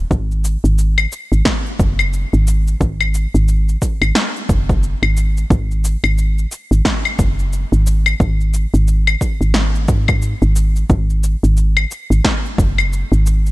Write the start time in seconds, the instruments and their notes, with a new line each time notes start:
0.11 fm bass G#1, kick, cabasa
0.31 cabasa
0.45 cabasa
0.64 fm bass G#1, cabasa
0.78 cabasa
0.98 cabasa, claves
1.12 cabasa
1.32 fm bass G#1, cabasa
1.45 kick, snare, cabasa
1.66 cabasa
1.79 fm bass F#1, kick, cabasa
1.99 cabasa, claves
2.13 cabasa
2.33 fm bass G#1, cabasa
2.47 cabasa
2.68 cabasa
2.81 fm bass G#1, kick, cabasa
3.01 cabasa, claves
3.15 cabasa
3.35 fm bass G#1, cabasa
3.48 cabasa
3.69 cabasa
3.82 kick, cabasa
4.02 fm bass G#1, cabasa, claves
4.15 snare, cabasa
4.36 cabasa
4.49 fm bass F#1, kick, cabasa
4.69 kick, cabasa
4.83 cabasa
5.03 fm bass G#1, cabasa, claves
5.17 cabasa
5.37 cabasa
5.50 fm bass G#1, kick, cabasa
5.71 cabasa
5.85 cabasa
6.04 fm bass G#1, cabasa, claves
6.18 cabasa
6.38 cabasa
6.52 cabasa
6.71 fm bass G#1, cabasa
6.85 kick, snare, cabasa
7.05 cabasa, claves
7.19 fm bass F#1, kick, cabasa
7.39 cabasa
7.53 cabasa
7.72 fm bass G#1, cabasa
7.87 cabasa
8.06 cabasa, claves
8.20 fm bass G#1, kick, cabasa
8.41 cabasa
8.54 cabasa
8.74 fm bass G#1, cabasa
8.88 cabasa
9.07 cabasa, claves
9.21 kick, cabasa
9.41 fm bass G#1, cabasa
9.54 snare, cabasa
9.75 cabasa
9.88 fm bass G#2, kick, cabasa
10.08 kick, cabasa, claves
10.22 cabasa
10.42 fm bass G#1, cabasa
10.56 cabasa
10.76 cabasa
10.90 fm bass G#1, kick, cabasa
11.10 cabasa
11.24 cabasa
11.43 fm bass G#1, cabasa
11.57 cabasa
11.77 cabasa, claves
11.91 cabasa
12.10 fm bass G#1, cabasa
12.25 kick, snare, cabasa
12.46 cabasa
12.58 fm bass F#1, kick, cabasa
12.78 cabasa, claves
12.93 cabasa
13.12 fm bass G#1, cabasa
13.27 cabasa
13.46 cabasa